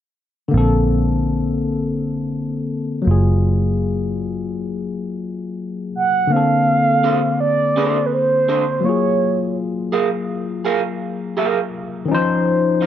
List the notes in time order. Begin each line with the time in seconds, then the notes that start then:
0.48 D3 A#3
0.54 A#1 C4 A4
3.02 F#3 A#3
3.07 F#1 F4 G#4
5.96 F#5
6.27 D3 A#3
6.32 C4 F5
6.36 A4
7.04 D4 A4 C5
7.40 D5
7.76 D4 A4 C5
8.06 B4
8.13 C5
8.48 D4 A4 C5
8.80 F#3 A#3
8.85 F4 G#4 C#5
9.92 G#4 A#4 F5
10.65 G#4 A#4 F5
11.37 G#4 A#4 F5
12.05 D#3 C#4
12.11 F3 D#4 C5
12.81 D#4 F4 C5